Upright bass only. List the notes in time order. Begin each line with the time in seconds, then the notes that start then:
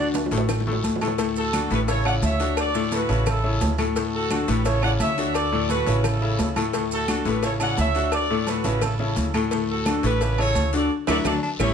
Already playing: D2
0.31 A1
0.84 D2
1.70 A1
2.22 D2
3.09 A1
3.61 D2
4.48 A1
5.00 D2
5.86 A1
6.38 D2
7.25 A1
7.77 D2
8.64 A1
9.16 D2
10.03 A1
10.55 D2
11.07 D2
11.25 D2
11.59 A1